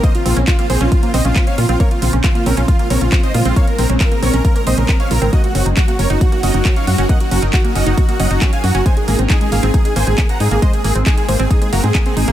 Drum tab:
HH |xxoxxxoxxxoxxxox|xxoxxxoxxxoxxxox|xxoxxxoxxxoxxxox|xxoxxxoxxxoxxxox|
CP |----x-------x---|----x-------x---|----x-------x---|----x-------x---|
BD |o---o---o---o---|o---o---o---o---|o---o---o---o---|o---o---o---o---|

HH |xxoxxxoxxxoxxxox|xxoxxxoxxxoxxxox|xxoxxxoxxxoxxxox|
CP |----x-------x---|----x-------x---|----x-------x---|
BD |o---o---o---o---|o---o---o---o---|o---o---o---o---|